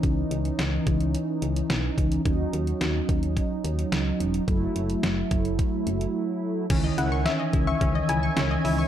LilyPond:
<<
  \new Staff \with { instrumentName = "Synth pluck" } { \time 4/4 \key cis \minor \tempo 4 = 108 r1 | r1 | r1 | r8 fis''16 r16 e''16 r8 e''8 r16 gis''16 r4 r16 | }
  \new Staff \with { instrumentName = "Analog synth pad" } { \time 4/4 \key cis \minor r1 | r1 | r1 | <cis'' e'' gis''>1 | }
  \new Staff \with { instrumentName = "Synth arpeggio sound" } { \time 4/4 \key cis \minor r1 | r1 | r1 | cis'16 dis''16 e'16 cis'''16 cis'16 dis''16 e'16 cis'''16 cis'16 dis''16 e'16 cis'''16 cis'16 dis''16 e'16 cis'''16 | }
  \new Staff \with { instrumentName = "Analog polysynth" } { \time 4/4 \key cis \minor <e cis' dis'>1 | <fis cis' dis'>1 | <fis a e'>1 | <dis e cis'>1 | }
  \new Staff \with { instrumentName = "FM bass" } { \clef bass \time 4/4 \key cis \minor cis,8 cis,8 cis,8 cis,8. r16 cis,8 b,,8 cis,8 | dis,8 dis,8 dis,8 dis,8. r16 dis,8 cis,8 e,,8 | fis,,8 fis,,8 fis,,8 fis,,8. r16 fis,,8 r4 | cis,8 cis,8. r16 cis,8 cis,8 cis,8 cis,8 cis,8 | }
  \new DrumStaff \with { instrumentName = "Drums" } \drummode { \time 4/4 <hh bd>8 hh16 hh16 <hh sn>8 <hh bd>16 hh16 hh8 hh16 hh16 <hh sn>8 <hh bd>16 hh16 | <hh bd>8 hh16 hh16 <hh sn>8 <hh bd>16 hh16 <hh bd>8 hh16 hh16 <hh sn>8 hh16 hh16 | <hh bd>8 hh16 hh16 <hh sn>8 <hh bd>16 hh16 <hh bd>8 hh16 hh16 r4 | <cymc hh bd>8 hh8 <hh sn>8 <hh bd>8 <hh bd>8 hh8 <hh sn>8 hho8 | }
>>